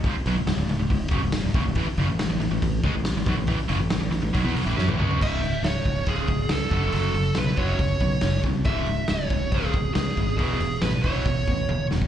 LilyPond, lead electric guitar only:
\new Staff \with { instrumentName = "Lead electric guitar" } { \time 4/4 \key cis \minor \tempo 4 = 139 r1 | r1 | r1 | e''4 cis''4 gis'4 a'4 |
a'4 b'8 cis''2 r8 | e''4 cis''4 gis'4 gis'4 | gis'4 b'8 cis''2 r8 | }